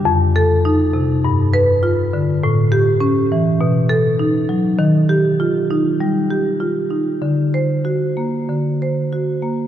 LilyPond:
<<
  \new Staff \with { instrumentName = "Marimba" } { \time 4/4 \key d \major \tempo 4 = 100 r8 a'4 r4 b'4 r8 | r8 g'4 r4 a'4 r8 | r8 g'4 r2 r8 | r8 c''4 r2 r8 | }
  \new Staff \with { instrumentName = "Marimba" } { \time 4/4 \key d \major f,4 ees'8 c8 g,4 f'8 d8 | a,4 cis'8 e8 b,4 dis'8 fis8 | ees4 f'8 ees'8 g8 g'8 f'8 ees'8 | d4 fis'8 ais8 d8 c''8 fis'8 ais8 | }
>>